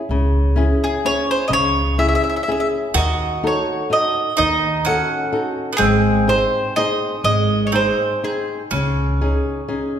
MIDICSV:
0, 0, Header, 1, 5, 480
1, 0, Start_track
1, 0, Key_signature, 4, "minor"
1, 0, Tempo, 476190
1, 96, Time_signature, 3, 2, 24, 8
1, 7296, Tempo, 490597
1, 9993, End_track
2, 0, Start_track
2, 0, Title_t, "Mandolin"
2, 0, Program_c, 0, 25
2, 845, Note_on_c, 0, 68, 71
2, 1060, Note_off_c, 0, 68, 0
2, 1067, Note_on_c, 0, 73, 89
2, 1294, Note_off_c, 0, 73, 0
2, 1319, Note_on_c, 0, 72, 80
2, 1455, Note_off_c, 0, 72, 0
2, 1490, Note_on_c, 0, 75, 63
2, 1535, Note_off_c, 0, 75, 0
2, 1545, Note_on_c, 0, 73, 95
2, 1976, Note_off_c, 0, 73, 0
2, 2005, Note_on_c, 0, 76, 65
2, 2075, Note_off_c, 0, 76, 0
2, 2101, Note_on_c, 0, 76, 56
2, 2156, Note_off_c, 0, 76, 0
2, 2168, Note_on_c, 0, 76, 59
2, 2237, Note_off_c, 0, 76, 0
2, 2254, Note_on_c, 0, 76, 43
2, 2301, Note_off_c, 0, 76, 0
2, 2313, Note_on_c, 0, 76, 47
2, 2371, Note_off_c, 0, 76, 0
2, 2383, Note_on_c, 0, 76, 46
2, 2438, Note_off_c, 0, 76, 0
2, 2450, Note_on_c, 0, 76, 53
2, 2520, Note_off_c, 0, 76, 0
2, 2536, Note_on_c, 0, 76, 46
2, 2606, Note_off_c, 0, 76, 0
2, 2622, Note_on_c, 0, 76, 52
2, 2690, Note_off_c, 0, 76, 0
2, 3001, Note_on_c, 0, 75, 71
2, 3488, Note_off_c, 0, 75, 0
2, 3497, Note_on_c, 0, 73, 65
2, 3955, Note_off_c, 0, 73, 0
2, 3959, Note_on_c, 0, 75, 77
2, 4403, Note_off_c, 0, 75, 0
2, 4415, Note_on_c, 0, 75, 85
2, 4902, Note_on_c, 0, 78, 78
2, 4910, Note_off_c, 0, 75, 0
2, 5344, Note_off_c, 0, 78, 0
2, 5814, Note_on_c, 0, 68, 91
2, 6327, Note_off_c, 0, 68, 0
2, 6342, Note_on_c, 0, 72, 81
2, 6784, Note_off_c, 0, 72, 0
2, 6816, Note_on_c, 0, 75, 97
2, 7264, Note_off_c, 0, 75, 0
2, 7302, Note_on_c, 0, 75, 93
2, 7712, Note_off_c, 0, 75, 0
2, 7716, Note_on_c, 0, 73, 61
2, 7776, Note_off_c, 0, 73, 0
2, 7802, Note_on_c, 0, 72, 68
2, 8281, Note_on_c, 0, 68, 55
2, 8283, Note_off_c, 0, 72, 0
2, 8614, Note_off_c, 0, 68, 0
2, 9993, End_track
3, 0, Start_track
3, 0, Title_t, "Nylon-string guitar"
3, 0, Program_c, 1, 24
3, 107, Note_on_c, 1, 49, 56
3, 562, Note_on_c, 1, 61, 54
3, 564, Note_off_c, 1, 49, 0
3, 570, Note_on_c, 1, 64, 47
3, 578, Note_on_c, 1, 68, 62
3, 944, Note_off_c, 1, 61, 0
3, 949, Note_off_c, 1, 64, 0
3, 954, Note_off_c, 1, 68, 0
3, 1056, Note_on_c, 1, 61, 42
3, 1061, Note_on_c, 1, 64, 45
3, 1068, Note_on_c, 1, 68, 51
3, 1430, Note_off_c, 1, 61, 0
3, 1432, Note_off_c, 1, 64, 0
3, 1438, Note_off_c, 1, 68, 0
3, 1504, Note_on_c, 1, 49, 54
3, 1973, Note_off_c, 1, 49, 0
3, 1998, Note_on_c, 1, 61, 52
3, 2002, Note_on_c, 1, 64, 43
3, 2008, Note_on_c, 1, 68, 53
3, 2387, Note_off_c, 1, 61, 0
3, 2388, Note_off_c, 1, 64, 0
3, 2393, Note_off_c, 1, 68, 0
3, 2500, Note_on_c, 1, 61, 41
3, 2504, Note_on_c, 1, 68, 51
3, 2507, Note_on_c, 1, 64, 35
3, 2886, Note_off_c, 1, 61, 0
3, 2886, Note_off_c, 1, 68, 0
3, 2889, Note_off_c, 1, 64, 0
3, 2972, Note_on_c, 1, 51, 50
3, 3445, Note_off_c, 1, 51, 0
3, 3461, Note_on_c, 1, 63, 47
3, 3462, Note_on_c, 1, 66, 39
3, 3466, Note_on_c, 1, 69, 49
3, 3850, Note_off_c, 1, 63, 0
3, 3850, Note_off_c, 1, 66, 0
3, 3853, Note_off_c, 1, 69, 0
3, 3929, Note_on_c, 1, 63, 48
3, 3938, Note_on_c, 1, 66, 36
3, 3940, Note_on_c, 1, 69, 46
3, 4318, Note_off_c, 1, 63, 0
3, 4323, Note_off_c, 1, 69, 0
3, 4324, Note_off_c, 1, 66, 0
3, 4427, Note_on_c, 1, 51, 58
3, 4887, Note_off_c, 1, 51, 0
3, 4895, Note_on_c, 1, 63, 50
3, 4901, Note_on_c, 1, 66, 42
3, 4913, Note_on_c, 1, 69, 56
3, 5278, Note_off_c, 1, 63, 0
3, 5282, Note_off_c, 1, 66, 0
3, 5289, Note_off_c, 1, 69, 0
3, 5367, Note_on_c, 1, 63, 42
3, 5367, Note_on_c, 1, 66, 43
3, 5370, Note_on_c, 1, 69, 46
3, 5751, Note_off_c, 1, 66, 0
3, 5751, Note_off_c, 1, 69, 0
3, 5752, Note_off_c, 1, 63, 0
3, 5835, Note_on_c, 1, 56, 65
3, 6308, Note_off_c, 1, 56, 0
3, 6324, Note_on_c, 1, 63, 53
3, 6331, Note_on_c, 1, 68, 45
3, 6339, Note_on_c, 1, 72, 62
3, 6712, Note_off_c, 1, 63, 0
3, 6714, Note_off_c, 1, 68, 0
3, 6721, Note_off_c, 1, 72, 0
3, 6820, Note_on_c, 1, 63, 43
3, 6824, Note_on_c, 1, 68, 44
3, 6833, Note_on_c, 1, 72, 52
3, 7204, Note_off_c, 1, 63, 0
3, 7207, Note_off_c, 1, 68, 0
3, 7212, Note_off_c, 1, 72, 0
3, 7304, Note_on_c, 1, 56, 63
3, 7762, Note_off_c, 1, 56, 0
3, 7775, Note_on_c, 1, 63, 52
3, 7787, Note_on_c, 1, 68, 48
3, 7792, Note_on_c, 1, 72, 53
3, 8159, Note_off_c, 1, 63, 0
3, 8167, Note_off_c, 1, 68, 0
3, 8168, Note_off_c, 1, 72, 0
3, 8272, Note_on_c, 1, 63, 39
3, 8273, Note_on_c, 1, 68, 36
3, 8286, Note_on_c, 1, 72, 42
3, 8651, Note_off_c, 1, 68, 0
3, 8652, Note_off_c, 1, 63, 0
3, 8660, Note_off_c, 1, 72, 0
3, 8749, Note_on_c, 1, 49, 62
3, 9210, Note_off_c, 1, 49, 0
3, 9228, Note_on_c, 1, 61, 52
3, 9229, Note_on_c, 1, 63, 41
3, 9231, Note_on_c, 1, 68, 56
3, 9608, Note_off_c, 1, 63, 0
3, 9609, Note_off_c, 1, 61, 0
3, 9609, Note_off_c, 1, 68, 0
3, 9689, Note_on_c, 1, 61, 48
3, 9691, Note_on_c, 1, 68, 48
3, 9696, Note_on_c, 1, 63, 37
3, 9993, Note_off_c, 1, 61, 0
3, 9993, Note_off_c, 1, 63, 0
3, 9993, Note_off_c, 1, 68, 0
3, 9993, End_track
4, 0, Start_track
4, 0, Title_t, "Mandolin"
4, 0, Program_c, 2, 25
4, 2966, Note_on_c, 2, 66, 91
4, 4380, Note_off_c, 2, 66, 0
4, 4403, Note_on_c, 2, 63, 76
4, 4886, Note_on_c, 2, 61, 68
4, 4903, Note_off_c, 2, 63, 0
4, 5768, Note_off_c, 2, 61, 0
4, 5772, Note_on_c, 2, 59, 54
4, 5824, Note_off_c, 2, 59, 0
4, 5828, Note_on_c, 2, 60, 69
4, 7757, Note_off_c, 2, 60, 0
4, 7768, Note_on_c, 2, 60, 54
4, 8474, Note_off_c, 2, 60, 0
4, 8735, Note_on_c, 2, 61, 65
4, 9993, Note_off_c, 2, 61, 0
4, 9993, End_track
5, 0, Start_track
5, 0, Title_t, "Upright bass"
5, 0, Program_c, 3, 32
5, 93, Note_on_c, 3, 37, 82
5, 711, Note_off_c, 3, 37, 0
5, 1518, Note_on_c, 3, 37, 83
5, 2145, Note_off_c, 3, 37, 0
5, 2967, Note_on_c, 3, 39, 83
5, 3602, Note_off_c, 3, 39, 0
5, 4423, Note_on_c, 3, 39, 89
5, 5042, Note_off_c, 3, 39, 0
5, 5851, Note_on_c, 3, 32, 92
5, 6475, Note_off_c, 3, 32, 0
5, 7297, Note_on_c, 3, 32, 97
5, 7919, Note_off_c, 3, 32, 0
5, 8739, Note_on_c, 3, 37, 85
5, 9363, Note_off_c, 3, 37, 0
5, 9993, End_track
0, 0, End_of_file